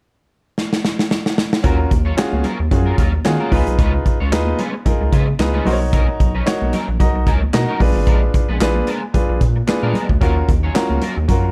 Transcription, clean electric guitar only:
1.64 F#3 C#4 F4 A#4
1.79 muted clean electric guitar stroke
1.90 muted clean electric guitar stroke
2.05 F#3 C#4 F4 C#5
2.32 muted clean electric guitar stroke
2.44 F#3 C#4 F4 A#4
2.59 muted clean electric guitar stroke
2.71 muted clean electric guitar stroke
2.86 F#3 C#4 F4 A#4
2.98 F#3 C#4 F4 A#4
3.13 muted clean electric guitar stroke
3.25 muted clean electric guitar stroke
3.40 F#3 C#4 F4 A#4
3.52 G#3 C#4 F4 B4
3.67 muted clean electric guitar stroke
3.79 G#3 C#4 F4 B4
3.94 muted clean electric guitar stroke
4.05 muted clean electric guitar stroke
4.20 G#3 C#4 F4 C#5
4.47 muted clean electric guitar stroke
4.59 G#3 C#4 F4 B4
4.74 muted clean electric guitar stroke
5.01 muted clean electric guitar stroke
5.12 G#3 C#4 F4 B4
5.27 muted clean electric guitar stroke
5.39 muted clean electric guitar stroke
5.54 G#3 C#4 F4 B4
5.66 F#3 C#4 D#4 A#4
5.81 muted clean electric guitar stroke
5.93 F#3 C#4 D#4 A#4
6.08 muted clean electric guitar stroke
6.20 muted clean electric guitar stroke
6.35 F#3 C#4 D#4 B4
6.62 muted clean electric guitar stroke
6.73 F#3 C#4 D#4 A#4
6.88 muted clean electric guitar stroke
7.15 muted clean electric guitar stroke
7.27 F#3 C#4 D#4 A#4
7.42 muted clean electric guitar stroke
7.53 muted clean electric guitar stroke
7.68 F#3 C#4 D#4 A#4
7.80 muted clean electric guitar stroke
7.95 muted clean electric guitar stroke
8.06 G#3 B3 D4 A#4
8.22 muted clean electric guitar stroke
8.34 muted clean electric guitar stroke
8.49 G#3 B3 D4 B4
8.75 muted clean electric guitar stroke
8.87 G#3 B3 D4 A#4
9.02 muted clean electric guitar stroke
9.14 muted clean electric guitar stroke
9.29 muted clean electric guitar stroke
9.56 muted clean electric guitar stroke
9.68 muted clean electric guitar stroke
9.83 G#3 B3 D4 A#4
9.94 G#3 B3 D4 A#4
10.10 muted clean electric guitar stroke
10.21 F#3 C#4 F4 A#4
10.36 muted clean electric guitar stroke
10.49 muted clean electric guitar stroke
10.63 F#3 C#4 F4 C#5
10.91 muted clean electric guitar stroke
11.02 F#3 C#4 F4 A#4
11.17 muted clean electric guitar stroke
11.44 muted clean electric guitar stroke

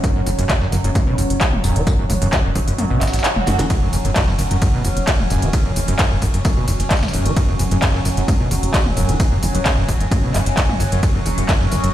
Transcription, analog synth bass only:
0.16 F#1
0.27 F#1
0.39 F#1
0.61 F#1
0.72 G1
0.84 F#1
1.07 F#1
1.18 F#1
1.30 F#1
1.53 E1
1.64 E1
1.76 E1
1.99 F#1
2.10 F#1
2.22 F#1
2.45 E1
2.56 F#1
2.68 F#1
2.91 A1
3.01 A1
3.14 A1
3.36 F#1
3.47 F#1
3.59 F#1
3.82 F#1
3.93 F#1
4.05 F#1
4.28 F#1
4.39 G1
4.51 F#1
4.74 F#1
4.85 F#1
4.97 F#1
5.20 E1
5.30 E1
5.42 E1
5.65 F#1
5.76 F#1
5.88 F#1
6.11 E1
6.22 F#1
6.34 F#1
6.57 F#1
6.68 F#1
6.80 F#1
7.03 F#1
7.14 F#1
7.25 F#1
7.49 F#1
7.59 F#1
7.71 F#1
7.94 F#1
8.05 G1
8.17 F#1
8.40 F#1
8.51 F#1
8.63 F#1
8.86 E1
8.97 E1
9.09 E1
9.32 F#1
9.43 F#1
9.55 F#1
9.78 E1
9.89 F#1
10.01 F#1
10.23 F#1
10.34 F#1
10.46 F#1
10.69 G1
10.80 G1
10.92 G1
11.15 F#1
11.26 F#1
11.38 F#1
11.61 F#1
11.72 G1
11.84 F#1

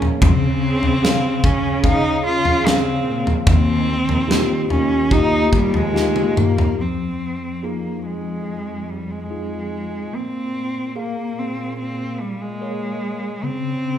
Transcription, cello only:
0.25 C4
1.46 C#4
1.86 D#4
2.26 F4
2.67 C4
3.49 C4
4.72 C#4
5.13 D#4
5.55 G3
5.76 G#3
6.39 A#3
6.81 C4
7.64 A#3
8.06 G#3
8.91 G3
9.11 G#3
10.16 C4
10.98 A#3
11.39 C4
11.79 C4
12.20 G3
12.41 G#3
13.44 C4

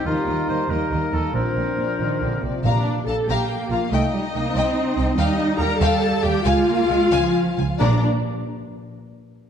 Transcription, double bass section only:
0.07 D#2
0.27 D#2
0.49 D#2
0.70 D#2
0.92 D#2
1.13 D#2
1.35 A#1
1.56 A#1
1.78 A#1
2.00 A#1
2.22 A#1
2.43 A#1
2.63 A#1
3.07 A#1
3.28 A#1
3.71 A#1
3.92 C2
4.34 C2
4.55 C2
4.97 C2
5.17 D#2
5.59 D#2
5.81 D#2
6.23 D#2
6.45 C#2
6.90 C#2
7.12 C#2
7.59 C#2
7.81 A#1

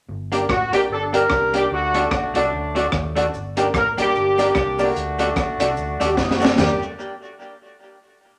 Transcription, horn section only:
0.51 F#4
0.74 G4
0.91 D4 A4
1.15 D4 G4 A#4
1.57 G4
1.72 A3 D4 F#4
2.13 F#4
2.37 F#3 A3 D4
3.77 A#4
4.01 A#3 D4 G4
4.42 A#3 D4 G4
4.81 A3 D4 F#4
6.05 G4
6.13 F#4
6.22 D#4
6.32 F#4
6.59 G4

